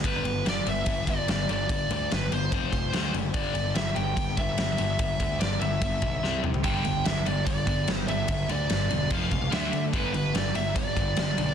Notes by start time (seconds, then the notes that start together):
0.04 G1 G2 D3 G3 B4, kick, ride
0.24 G1 G2 D3, ride
0.45 G1 G2 D3 D5, snare, ride
0.66 G1 G2 D3 E5, ride
0.86 G1 G2 D3, kick, ride
1.07 G1 G2 D3 D5, kick, ride
1.28 G1 G2 D3 D5, snare, ride
1.49 G1 G2 D3 D5, ride
1.69 G1 G2 D3, kick, ride
1.91 D2 G2 D3 D5, ride
2.11 G1 G2 D3 B4, snare, ride
2.32 G1 G2 D3 C5, ride
2.52 F1 F2 C3 F3, kick, ride
2.73 F1 F2 C3, kick, ride
2.93 D2 D3 A3 D4, snare, ride
3.14 F#1 D3 A3, ride
3.34 G1 G2 D3 G3 D5, kick, ride
3.55 G1 G2 D3, ride
3.75 G1 G2 D3 E5, snare, ride
3.95 G1 G2 D3 G5, ride
4.16 G1 G2 D3, kick, ride
4.37 G1 G2 D3 E5, kick, ride
4.58 G1 G2 D3, snare, ride
4.78 G1 G2 D3 E5, ride
4.99 G1 G2 D3, kick, ride
5.20 D2 G2 D3, kick, ride
5.40 G1 G2 D3 D5, snare, ride
5.60 G1 G2 D3 E5, ride
5.81 G1 G2 D3, kick, ride
6.02 B1 G2 D3, kick, ride
6.23 C2 C3 G3 C4, snare
6.44 C3 G3, mid tom
6.54 floor tom
6.64 G1 G2 D3 G3 G5, kick, ride
6.85 G1 G2 D3, ride
7.05 G1 G2 D3 E5, snare, ride
7.26 G1 G2 D3 D5, ride
7.46 G1 G2 D3 D5, kick, ride
7.67 G1 G2 D3, kick, ride
7.88 G1 G2 D3, snare, ride
7.95 C5
8.08 G1 G2 D3 E5, ride
8.28 G1 G2 D3, kick, ride
8.49 D2 G2 D3 D5, ride
8.70 G1 G2 D3, snare, ride
8.90 E1 G2 D3, ride
9.10 F1 F2 C3 F3 F5, kick, ride
9.31 C#2 F2 C3, kick, ride
9.51 D2 D3 A3 D4 E5, snare, ride
9.72 D3 A3, ride
9.93 G1 G2 D3 G3 B4, kick, ride
10.13 G1 G2 D3 B4, ride
10.34 G1 G2 D3 D5, snare, ride
10.55 G1 G2 D3 E5, ride
10.75 G1 G2 D3 D5, kick, ride
10.96 G1 G2 D3, kick, ride
11.17 G1 G2 D3, snare, ride
11.38 B1 G2 D3, ride